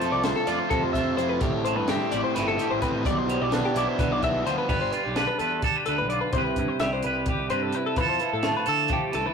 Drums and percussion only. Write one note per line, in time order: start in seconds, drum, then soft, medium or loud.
0.01 closed hi-hat medium
0.24 snare loud
0.24 closed hi-hat medium
0.47 snare soft
0.47 closed hi-hat medium
0.71 kick loud
0.71 closed hi-hat medium
0.94 kick medium
0.94 snare soft
0.94 closed hi-hat medium
1.18 closed hi-hat medium
1.41 kick loud
1.41 closed hi-hat medium
1.65 closed hi-hat medium
1.88 snare loud
1.88 closed hi-hat medium
2.12 closed hi-hat medium
2.36 snare soft
2.36 closed hi-hat medium
2.59 closed hi-hat medium
2.82 kick medium
2.82 closed hi-hat medium
3.05 kick loud
3.05 closed hi-hat medium
3.29 closed hi-hat medium
3.52 snare loud
3.52 closed hi-hat medium
3.76 closed hi-hat medium
3.99 kick loud
3.99 closed hi-hat medium
4.22 kick medium
4.22 closed hi-hat medium
4.47 closed hi-hat soft
4.69 kick loud
4.69 crash medium
4.93 closed hi-hat medium
5.16 snare medium
5.16 closed hi-hat medium
5.39 closed hi-hat medium
5.62 kick loud
5.62 closed hi-hat medium
5.86 closed hi-hat medium
6.10 closed hi-hat medium
6.33 kick loud
6.33 closed hi-hat medium
6.56 kick medium
6.56 closed hi-hat medium
6.80 snare medium
6.80 closed hi-hat medium
7.03 closed hi-hat medium
7.26 kick medium
7.26 closed hi-hat medium
7.50 closed hi-hat medium
7.73 closed hi-hat soft
7.96 kick loud
7.96 closed hi-hat medium
8.20 closed hi-hat medium
8.43 snare loud
8.43 closed hi-hat medium
8.66 closed hi-hat medium
8.88 kick loud
8.88 closed hi-hat medium
9.13 snare soft
9.13 closed hi-hat medium